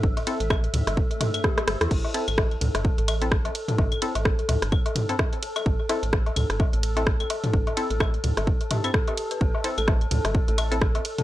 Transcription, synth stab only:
X:1
M:4/4
L:1/16
Q:"Swing 16ths" 1/4=128
K:Am
V:1 name="Synth stab"
z2 [CEA] z12 z | z2 [CEA] z8 [CEA] z4 | z2 [CEA] z8 [CEA] z4 | z2 [CEA] z8 [CEA] z4 |
z2 [CEA] z8 [CEA] z4 | z2 [CEA] z8 [CEA] z4 |]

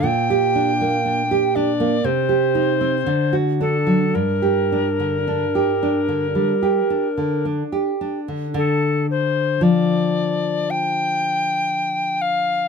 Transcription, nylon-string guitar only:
X:1
M:4/4
L:1/16
Q:1/4=56
K:Gm
V:1 name="Nylon-string guitar"
B,, G D B, D G D B, C, G E C D, ^F D ^F, | G,, G D D, D G D D, G, G D D, D G D D, | [K:Dm] D,4 F,12 |]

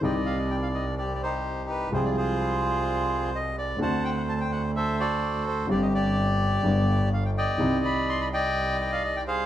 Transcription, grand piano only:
X:1
M:4/4
L:1/8
Q:1/4=127
K:Cm
V:1 name="Grand piano" clef=bass
[C,,C,E,CEG]8 | [C,,C,F,A,Cg]8 | [D,,D,=A,C^F]8 | [G,,,G,,D,G,CG]4 [G,,,G,,D,G,=B,G]4 |
[C,,C,E,G,CE]8 |]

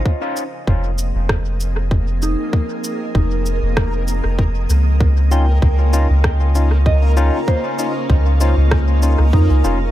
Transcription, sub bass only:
X:1
M:4/4
L:1/16
Q:"Swing 16ths" 1/4=97
K:Fm
V:1 name="Sub bass" clef=bass
z4 F,,,3 F,,,8 z | z4 F,,,3 F,,,4 F,,,3 D,,2- | D,,4 D,,3 D,,8 z | z4 D,,3 D,,4 D,, F,, D,, F,,,2 |]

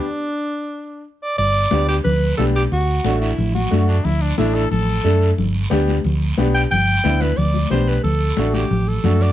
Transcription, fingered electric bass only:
X:1
M:4/4
L:1/8
Q:1/4=180
K:G
V:1 name="Fingered electric bass" clef=bass
z8 | G,,,2 D,,2 D,,2 B,,,2 | D,,2 A,,,2 A,,,2 F,,2 | D,,2 A,,,2 A,,,2 F,,2 |
G,,,2 D,,2 D,,2 B,,,2 | G,,,2 D,,2 D,,2 B,,,2 | D,,2 A,,,2 A,,,2 F,,2 |]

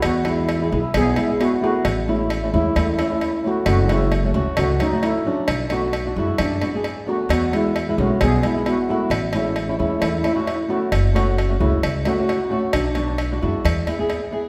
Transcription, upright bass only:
X:1
M:4/4
L:1/16
Q:"Swing 16ths" 1/4=132
K:E
V:1 name="Upright bass" clef=bass
E,,6 B,,, z B,,,2 z6 | A,,,6 E,, z E,,2 z6 | F,,,6 C,, z C,,2 z6 | B,,,6 F,, z F,,2 z6 |
E,,6 B,,, z B,,,2 z6 | A,,,6 E,, z E,,2 z6 | F,,,6 C,, z C,,2 z6 | B,,,6 F,, z E,,2 z6 |]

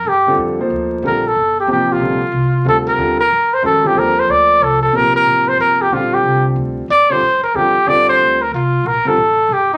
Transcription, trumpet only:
X:1
M:3/4
L:1/8
Q:"Swing" 1/4=184
K:Eblyd
V:1 name="Trumpet"
G2 z4 | B A2 G G F- | F4 A B- | B B2 c A G |
B c d2 A A | B B2 c B G | F G2 z3 | d c2 B G2 |
d c2 B F2 | B A3 G E |]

